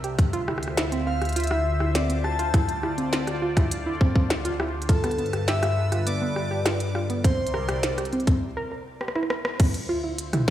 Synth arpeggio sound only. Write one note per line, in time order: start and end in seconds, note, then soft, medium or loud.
0.04 0.13 G4 medium
0.33 0.42 F4 loud
0.48 0.57 E4 medium
0.77 0.86 E4 medium
0.92 1.05 C4 medium
1.07 1.12 C4 medium
1.36 1.45 F4 loud
1.51 1.60 E4 medium
1.80 1.89 E4 medium
1.95 2.08 C4 medium
2.10 2.15 C4 medium
2.39 2.48 F4 loud
2.54 2.63 E4 medium
2.83 2.92 E4 medium
2.98 3.11 C4 medium
3.13 3.18 C4 medium
3.42 3.51 F4 loud
3.57 3.66 E4 medium
3.86 3.95 E4 medium
4.01 4.14 C4 medium
4.16 4.21 C4 medium
4.45 4.54 F4 loud
4.60 4.69 E4 medium
4.89 4.98 F4 medium
5.04 5.17 B3 medium
5.19 5.24 B3 medium
5.48 5.57 G4 loud
5.63 5.72 F4 medium
5.92 6.01 F4 medium
6.07 6.20 B3 medium
6.22 6.27 B3 medium
6.51 6.60 G4 loud
6.66 6.74 F4 medium
6.95 7.04 F4 medium
7.10 7.23 B3 medium
7.25 7.30 C4 medium
7.54 7.63 A#4 loud
7.69 7.77 G4 medium
7.98 8.07 G4 medium
8.13 8.26 C4 medium
8.27 8.33 C4 medium
8.57 8.66 A#4 loud
8.72 8.80 A#4 medium
9.01 9.06 G4 medium
9.16 9.25 E4 loud
9.30 9.44 A#4 medium
9.60 9.65 C4 medium
9.89 9.98 F4 loud
10.04 10.13 E4 medium
10.33 10.42 E4 medium